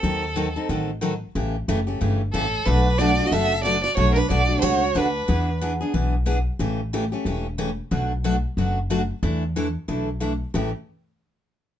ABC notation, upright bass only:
X:1
M:4/4
L:1/8
Q:"Swing" 1/4=183
K:Amix
V:1 name="Upright bass" clef=bass
^D,,4 A,,,4 | A,,,2 F,,,2 G,,,2 A,,,2 | B,,,4 F,,,4 | B,,,2 B,,,2 C,,2 D,,2 |
E,,4 B,,,4 | A,,,4 E,,,4 | B,,,4 F,,,4 | E,,4 B,,,4 |
A,,, z6 z |]